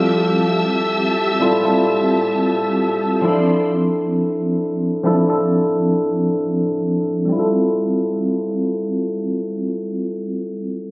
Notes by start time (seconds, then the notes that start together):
Already playing: F3 G3 C4 E4 F4 G4 A4 E5 A5 E6
1.40 G3 C4 E4 F4 A4
1.62 G3 C4 E4 F4 A4
3.22 F3 C4 D4 E4 A4 D5 C6
5.03 F3 C4 D4 E4 A4
5.26 F3 C4 D4 E4 A4
7.25 G3 C4
7.32 E4 F4
7.39 A4